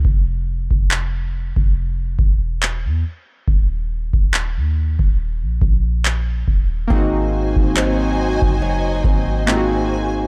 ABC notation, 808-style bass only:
X:1
M:4/4
L:1/16
Q:"Swing 16ths" 1/4=70
K:Ebdor
V:1 name="808-style bass" clef=bass
F,,,3 F,,,4 F,,,3 _F,,,3 _F,, z2 | E,,,3 E,,,2 E,,2 E,,,2 B,,, B,,,4 E,,,2 | A,,,3 A,,,4 G,,,3 A,,,6 |]